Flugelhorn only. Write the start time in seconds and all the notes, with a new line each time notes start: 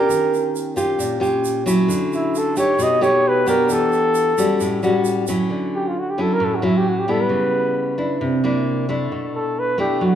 Already playing: A#4
2.15 E4
2.38 A4
2.58 C#5
2.83 D#5
3.03 C#5
3.28 B4
3.49 A#4
3.73 A4
5.75 G4
5.88 F4
5.99 F#4
6.10 G4
6.22 A4
6.34 A#4
6.44 A4
6.55 F#4
6.65 E4
6.77 G4
6.89 F#4
7.00 G4
7.11 A4
7.21 B4
9.35 A4
9.59 B4
9.80 G4
10.05 F#4